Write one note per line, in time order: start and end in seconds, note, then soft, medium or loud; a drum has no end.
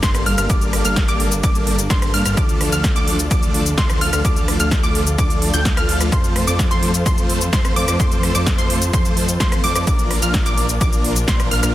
0.00 0.24 G1 loud
0.00 2.33 G3 medium
0.00 0.23 G3 loud
0.00 2.33 A#3 medium
0.00 0.23 A#3 medium
0.00 6.08 D4 medium
0.00 0.23 D4 medium
0.00 9.83 A4 medium
0.00 0.23 A4 medium
0.00 0.23 C5 loud
0.00 0.23 C6 loud
0.00 kick loud
0.00 snare loud
0.00 closed hi-hat medium
0.00 shaker medium
0.15 cross-stick medium
0.15 closed hi-hat soft
0.15 shaker soft
0.26 0.36 G1 loud
0.26 0.35 G3 loud
0.26 0.35 A#3 medium
0.26 0.35 D4 medium
0.26 0.35 A4 medium
0.26 0.35 F5 loud
0.26 0.35 F6 loud
0.26 open hi-hat loud
0.38 0.47 G1 loud
0.38 0.47 G3 medium
0.38 0.47 A#3 medium
0.38 0.47 D4 medium
0.38 0.47 A4 medium
0.38 0.47 F5 medium
0.38 0.47 F6 medium
0.38 cross-stick medium
0.38 closed hi-hat medium
0.38 shaker medium
0.50 0.83 G1 loud
0.50 0.82 G3 medium
0.50 0.82 A#3 medium
0.50 0.82 D4 medium
0.50 0.82 A4 medium
0.50 0.82 D5 medium
0.50 0.82 D6 medium
0.50 kick loud
0.50 closed hi-hat medium
0.50 shaker medium
0.61 closed hi-hat soft
0.61 shaker soft
0.73 cross-stick medium
0.73 open hi-hat loud
0.85 1.06 G1 loud
0.85 1.05 G3 medium
0.85 1.05 A#3 medium
0.85 1.05 D4 medium
0.85 1.05 A4 medium
0.85 1.05 F5 medium
0.85 1.06 F6 medium
0.85 closed hi-hat medium
0.85 shaker medium
0.96 kick loud
0.96 snare loud
0.96 closed hi-hat medium
0.96 shaker medium
1.08 1.41 G1 loud
1.08 1.28 G3 medium
1.08 1.28 A#3 medium
1.08 1.28 D4 medium
1.08 1.28 A4 medium
1.08 1.28 D5 loud
1.08 1.28 D6 loud
1.08 closed hi-hat soft
1.08 shaker soft
1.20 open hi-hat loud
1.32 closed hi-hat medium
1.32 shaker medium
1.43 1.88 G1 loud
1.43 1.76 G3 medium
1.43 1.76 A#3 medium
1.43 1.76 D4 medium
1.43 1.76 A4 medium
1.43 1.76 D5 loud
1.43 1.76 D6 loud
1.43 kick loud
1.43 closed hi-hat medium
1.43 shaker medium
1.55 closed hi-hat soft
1.55 shaker soft
1.67 open hi-hat loud
1.79 closed hi-hat medium
1.79 shaker medium
1.90 2.11 G1 medium
1.90 2.11 G3 loud
1.90 2.11 A#3 medium
1.90 2.11 D4 medium
1.90 2.11 A4 medium
1.90 2.11 C5 loud
1.90 2.11 C6 loud
1.90 kick loud
1.90 snare loud
1.90 closed hi-hat medium
1.90 shaker medium
2.02 cross-stick medium
2.02 closed hi-hat soft
2.02 shaker soft
2.14 2.23 G2 medium
2.14 2.23 G3 medium
2.14 2.23 A#3 medium
2.14 2.23 D4 medium
2.14 2.23 A4 medium
2.14 2.23 F5 loud
2.14 2.23 F6 loud
2.14 open hi-hat loud
2.25 2.35 G1 loud
2.25 2.34 G3 medium
2.25 2.34 A#3 medium
2.25 2.34 D4 medium
2.25 2.34 A4 medium
2.25 2.34 F5 medium
2.25 2.34 F6 medium
2.25 cross-stick medium
2.25 closed hi-hat medium
2.25 shaker medium
2.37 2.70 D2 medium
2.37 6.09 D3 medium
2.37 2.70 F3 medium
2.37 2.70 A3 medium
2.37 2.70 D4 medium
2.37 11.75 F4 medium
2.37 2.70 A4 medium
2.37 2.70 D5 medium
2.37 2.70 D6 medium
2.37 kick loud
2.37 closed hi-hat medium
2.37 shaker medium
2.49 closed hi-hat soft
2.49 shaker soft
2.61 cross-stick medium
2.61 open hi-hat loud
2.72 2.93 D2 loud
2.72 2.93 F3 medium
2.72 2.93 A3 medium
2.72 2.93 D4 medium
2.72 2.93 A4 medium
2.72 2.93 F5 medium
2.72 2.93 F6 medium
2.72 closed hi-hat soft
2.72 shaker medium
2.84 kick loud
2.84 snare loud
2.84 closed hi-hat medium
2.84 shaker medium
2.96 3.29 D2 loud
2.96 3.16 F3 medium
2.96 3.16 A3 medium
2.96 3.16 D4 medium
2.96 3.16 A4 medium
2.96 3.16 D5 loud
2.96 3.16 D6 loud
2.96 closed hi-hat soft
2.96 shaker soft
3.08 open hi-hat loud
3.19 closed hi-hat medium
3.19 shaker medium
3.31 3.75 D2 loud
3.31 3.63 F3 medium
3.31 3.63 A3 medium
3.31 3.63 D4 medium
3.31 3.63 A4 medium
3.31 3.63 D5 loud
3.31 3.63 D6 medium
3.31 kick loud
3.31 closed hi-hat medium
3.31 shaker medium
3.43 closed hi-hat soft
3.43 shaker soft
3.54 open hi-hat loud
3.66 closed hi-hat medium
3.66 shaker medium
3.78 3.99 D2 loud
3.78 3.98 F3 loud
3.78 3.98 A3 medium
3.78 3.98 D4 medium
3.78 3.98 A4 medium
3.78 3.98 C5 loud
3.78 3.98 C6 loud
3.78 kick loud
3.78 snare loud
3.78 closed hi-hat medium
3.78 shaker soft
3.90 cross-stick medium
3.90 closed hi-hat soft
3.90 shaker soft
4.01 4.11 D2 loud
4.01 4.10 F3 medium
4.01 4.10 A3 medium
4.01 4.10 D4 medium
4.01 4.10 A4 medium
4.01 4.10 F5 loud
4.01 4.10 F6 loud
4.01 open hi-hat loud
4.13 4.22 D2 loud
4.13 4.22 F3 medium
4.13 4.22 A3 medium
4.13 4.22 D4 medium
4.13 4.22 A4 medium
4.13 4.22 F5 medium
4.13 4.22 F6 medium
4.13 cross-stick medium
4.13 closed hi-hat medium
4.13 shaker medium
4.25 4.57 D2 medium
4.25 4.57 F3 medium
4.25 4.57 A3 medium
4.25 4.57 D4 medium
4.25 4.57 A4 medium
4.25 4.57 D5 medium
4.25 4.57 D6 medium
4.25 kick loud
4.25 closed hi-hat medium
4.25 shaker medium
4.36 closed hi-hat soft
4.36 shaker soft
4.48 cross-stick medium
4.48 open hi-hat loud
4.60 4.81 D2 loud
4.60 4.80 F3 medium
4.60 4.80 A3 medium
4.60 4.80 D4 medium
4.60 4.80 A4 medium
4.60 4.80 F5 medium
4.60 4.81 F6 medium
4.60 closed hi-hat medium
4.60 shaker medium
4.71 kick loud
4.71 snare loud
4.71 closed hi-hat medium
4.71 shaker medium
4.83 5.16 D2 loud
4.83 5.03 F3 medium
4.83 5.03 A3 medium
4.83 5.03 D4 medium
4.83 5.03 A4 medium
4.83 5.03 D5 medium
4.83 5.03 D6 loud
4.83 closed hi-hat soft
4.83 shaker soft
4.95 open hi-hat loud
5.07 closed hi-hat soft
5.07 shaker medium
5.18 5.51 D2 loud
5.18 5.51 F3 medium
5.18 5.51 A3 medium
5.18 5.51 D4 medium
5.18 5.51 A4 medium
5.18 5.51 D5 loud
5.18 5.51 D6 loud
5.18 kick loud
5.18 closed hi-hat medium
5.18 shaker medium
5.30 closed hi-hat soft
5.30 shaker soft
5.42 open hi-hat loud
5.54 5.75 D2 loud
5.54 5.74 F3 medium
5.54 5.74 A3 medium
5.54 5.74 D4 medium
5.54 5.74 A4 medium
5.54 5.74 G5 loud
5.54 5.74 G6 loud
5.54 closed hi-hat soft
5.54 shaker medium
5.65 kick loud
5.65 snare loud
5.65 closed hi-hat medium
5.65 shaker medium
5.77 6.10 D2 loud
5.77 6.09 F3 loud
5.77 6.09 A3 medium
5.77 6.09 D4 medium
5.77 6.09 A4 medium
5.77 6.09 F5 loud
5.77 6.09 F6 loud
5.77 cross-stick medium
5.77 closed hi-hat soft
5.77 shaker soft
5.89 open hi-hat loud
6.01 cross-stick medium
6.01 closed hi-hat medium
6.01 shaker medium
6.12 6.45 F2 medium
6.12 6.45 F3 medium
6.12 9.84 F3 medium
6.12 6.45 A3 medium
6.12 6.45 C4 medium
6.12 6.45 A4 medium
6.12 6.45 C5 medium
6.12 9.84 C5 medium
6.12 6.45 C6 medium
6.12 kick loud
6.12 closed hi-hat medium
6.12 shaker medium
6.24 closed hi-hat soft
6.24 shaker soft
6.36 cross-stick medium
6.36 open hi-hat loud
6.47 6.69 F2 loud
6.47 6.68 F3 medium
6.47 6.68 A3 medium
6.47 6.68 C4 medium
6.47 6.68 A4 medium
6.47 6.68 D5 medium
6.47 6.68 D6 medium
6.47 closed hi-hat medium
6.47 shaker medium
6.59 kick loud
6.59 snare loud
6.59 closed hi-hat medium
6.59 shaker medium
6.71 7.04 F2 loud
6.71 6.91 F3 medium
6.71 6.91 A3 medium
6.71 6.91 C4 medium
6.71 6.91 A4 medium
6.71 6.91 C5 loud
6.71 6.91 C6 loud
6.71 closed hi-hat soft
6.71 shaker soft
6.83 open hi-hat loud
6.94 closed hi-hat soft
6.94 shaker medium
7.06 7.50 F2 loud
7.06 7.38 F3 medium
7.06 7.38 A3 medium
7.06 7.38 C4 medium
7.06 7.38 A4 medium
7.06 7.38 C5 loud
7.06 7.38 C6 medium
7.06 kick loud
7.06 closed hi-hat medium
7.06 shaker medium
7.18 closed hi-hat soft
7.18 shaker soft
7.30 open hi-hat loud
7.41 closed hi-hat soft
7.41 shaker medium
7.53 7.74 F2 medium
7.53 7.73 F3 loud
7.53 7.73 A3 medium
7.53 7.73 C4 medium
7.53 7.73 A4 medium
7.53 7.73 C5 loud
7.53 7.73 C6 loud
7.53 kick loud
7.53 snare loud
7.53 closed hi-hat medium
7.53 shaker medium
7.65 cross-stick medium
7.65 closed hi-hat soft
7.65 shaker soft
7.76 7.86 F2 loud
7.76 7.85 F3 medium
7.76 7.85 A3 medium
7.76 7.85 C4 medium
7.76 7.85 A4 medium
7.76 7.85 D5 loud
7.76 7.85 D6 loud
7.76 open hi-hat loud
7.88 7.97 F2 loud
7.88 7.97 F3 medium
7.88 7.97 A3 medium
7.88 7.97 C4 medium
7.88 7.97 A4 medium
7.88 7.97 D5 medium
7.88 7.97 D6 medium
7.88 cross-stick medium
7.88 closed hi-hat medium
7.88 shaker medium
8.00 8.33 F2 medium
8.00 8.32 F3 medium
8.00 8.32 A3 medium
8.00 8.32 C4 medium
8.00 8.32 A4 medium
8.00 8.32 C5 medium
8.00 8.32 C6 medium
8.00 kick loud
8.00 closed hi-hat medium
8.00 shaker medium
8.12 closed hi-hat soft
8.12 shaker soft
8.23 cross-stick medium
8.23 open hi-hat loud
8.35 8.56 F2 loud
8.35 8.55 F3 medium
8.35 8.55 A3 medium
8.35 8.55 C4 medium
8.35 8.55 A4 medium
8.35 8.55 D5 medium
8.35 8.55 D6 medium
8.35 closed hi-hat medium
8.35 shaker medium
8.46 kick loud
8.46 snare loud
8.46 closed hi-hat medium
8.46 shaker medium
8.58 8.91 F2 loud
8.58 8.78 F3 medium
8.58 8.78 A3 medium
8.58 8.78 C4 medium
8.58 8.78 A4 medium
8.58 8.78 C5 loud
8.58 8.78 C6 loud
8.58 closed hi-hat soft
8.58 shaker soft
8.70 open hi-hat loud
8.82 closed hi-hat medium
8.82 shaker medium
8.93 9.38 F2 loud
8.93 9.26 F3 medium
8.93 9.26 A3 medium
8.93 9.26 C4 medium
8.93 9.26 A4 medium
8.93 9.26 C5 loud
8.93 9.26 C6 medium
8.93 kick loud
8.93 closed hi-hat medium
8.93 shaker medium
9.05 closed hi-hat soft
9.05 shaker soft
9.17 open hi-hat loud
9.29 closed hi-hat medium
9.29 shaker medium
9.40 9.61 F2 medium
9.40 9.61 F3 loud
9.40 9.61 A3 medium
9.40 9.61 C4 medium
9.40 9.61 A4 medium
9.40 9.61 C5 loud
9.40 9.61 C6 loud
9.40 kick loud
9.40 snare loud
9.40 closed hi-hat medium
9.40 shaker medium
9.52 cross-stick medium
9.52 closed hi-hat soft
9.52 shaker soft
9.64 9.73 F2 loud
9.64 9.73 F3 medium
9.64 9.73 A3 medium
9.64 9.73 C4 medium
9.64 9.73 A4 medium
9.64 9.73 D5 loud
9.64 9.73 D6 loud
9.64 open hi-hat loud
9.75 9.85 F2 loud
9.75 9.84 F3 medium
9.75 9.84 A3 medium
9.75 9.84 C4 medium
9.75 9.84 A4 medium
9.75 9.84 D5 medium
9.75 9.84 D6 medium
9.75 cross-stick medium
9.75 closed hi-hat medium
9.75 shaker medium
9.87 10.20 A#1 medium
9.87 10.20 F3 medium
9.87 10.20 A#3 medium
9.87 11.75 A#3 medium
9.87 11.75 D4 medium
9.87 10.20 D4 medium
9.87 10.20 A#4 medium
9.87 10.20 D5 medium
9.87 10.20 D6 medium
9.87 kick loud
9.87 closed hi-hat medium
9.87 shaker medium
9.99 closed hi-hat soft
9.99 shaker soft
10.11 cross-stick medium
10.11 open hi-hat loud
10.22 10.44 A#1 loud
10.22 10.43 F3 medium
10.22 10.43 A#3 medium
10.22 10.43 D4 medium
10.22 10.43 A#4 medium
10.22 10.43 F5 medium
10.22 10.43 F6 medium
10.22 closed hi-hat medium
10.22 shaker medium
10.34 kick loud
10.34 snare loud
10.34 closed hi-hat medium
10.34 shaker medium
10.46 10.79 A#1 loud
10.46 10.66 F3 medium
10.46 10.66 A#3 medium
10.46 10.66 D4 medium
10.46 10.66 A#4 medium
10.46 10.66 D5 loud
10.46 10.66 D6 loud
10.46 closed hi-hat soft
10.46 shaker soft
10.58 open hi-hat loud
10.69 closed hi-hat medium
10.69 shaker medium
10.81 11.26 A#1 loud
10.81 11.13 F3 medium
10.81 11.13 A#3 medium
10.81 11.13 D4 medium
10.81 11.13 A#4 medium
10.81 11.13 D5 loud
10.81 11.13 D6 loud
10.81 kick loud
10.81 closed hi-hat medium
10.81 shaker medium
10.93 closed hi-hat soft
10.93 shaker soft
11.04 open hi-hat loud
11.16 closed hi-hat medium
11.16 shaker medium
11.28 11.49 A#1 medium
11.28 11.48 F3 medium
11.28 11.48 A#3 medium
11.28 11.48 D4 medium
11.28 11.48 A#4 medium
11.28 11.48 C5 loud
11.28 11.49 C6 loud
11.28 kick loud
11.28 snare loud
11.28 closed hi-hat medium
11.28 shaker medium
11.40 cross-stick medium
11.40 closed hi-hat soft
11.40 shaker soft
11.51 11.61 A#1 loud
11.51 11.60 F3 loud
11.51 11.60 A#3 medium
11.51 11.60 D4 medium
11.51 11.60 A#4 medium
11.51 11.60 F5 loud
11.51 11.60 F6 loud
11.51 open hi-hat loud
11.63 11.72 A#1 loud
11.63 11.72 F3 medium
11.63 11.72 A#3 medium
11.63 11.72 D4 medium
11.63 11.72 A#4 medium
11.63 11.72 F5 medium
11.63 11.72 F6 medium
11.63 cross-stick medium
11.63 closed hi-hat medium
11.63 shaker medium